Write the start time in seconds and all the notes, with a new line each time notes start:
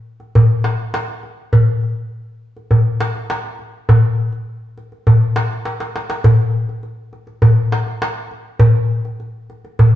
0.20 darbuka ka
0.35 darbuka dum
0.64 darbuka tek
0.79 darbuka ka
0.94 darbuka tek
1.08 darbuka ka
1.23 darbuka ka
1.53 darbuka dum
1.69 darbuka ka
1.83 darbuka ka
2.57 darbuka ka
2.71 darbuka dum
3.01 darbuka tek
3.15 darbuka ka
3.30 darbuka tek
3.45 darbuka ka
3.59 darbuka ka
3.89 darbuka dum
4.03 darbuka ka
4.33 darbuka ka
4.78 darbuka ka
4.92 darbuka ka
5.07 darbuka dum
5.36 darbuka tek
5.51 darbuka ka
5.65 darbuka tek
5.80 darbuka ka
5.96 darbuka tek
6.10 darbuka ka
6.24 darbuka dum
6.39 darbuka ka
6.69 darbuka ka
6.83 darbuka ka
7.13 darbuka ka
7.27 darbuka ka
7.42 darbuka dum
7.72 darbuka tek
7.87 darbuka ka
8.02 darbuka tek
8.31 darbuka ka
8.59 darbuka dum
8.75 darbuka ka
9.05 darbuka ka
9.20 darbuka ka
9.50 darbuka ka
9.65 darbuka ka
9.79 darbuka dum